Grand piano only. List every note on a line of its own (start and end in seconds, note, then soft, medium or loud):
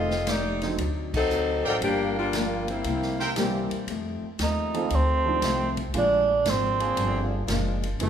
0.62 0.77 D3 medium
0.62 0.77 F#3 medium
0.62 0.77 A3 medium
0.62 0.77 C4 soft
0.62 0.77 D#4 medium
3.35 3.87 E3 medium
3.35 3.87 G3 medium
3.35 3.88 A#3 medium
3.35 3.88 C4 medium
3.35 3.88 G4 medium
4.74 4.89 D#3 medium
4.74 4.89 F3 medium
4.74 4.89 A3 medium
4.74 4.90 C4 medium
4.74 4.90 F4 medium
5.26 5.40 D#3 medium
5.26 5.41 F3 medium
5.26 5.41 A3 medium
5.26 5.41 C4 medium
5.26 5.41 D4 medium
5.94 7.38 D3 medium
5.94 7.39 F3 medium
5.94 7.39 G#3 medium
5.94 7.39 A#3 medium
5.94 7.39 F4 medium
8.00 8.10 D3 medium
8.00 8.10 E3 soft
8.00 8.10 G#3 soft
8.00 8.10 B3 soft
8.00 8.10 E4 medium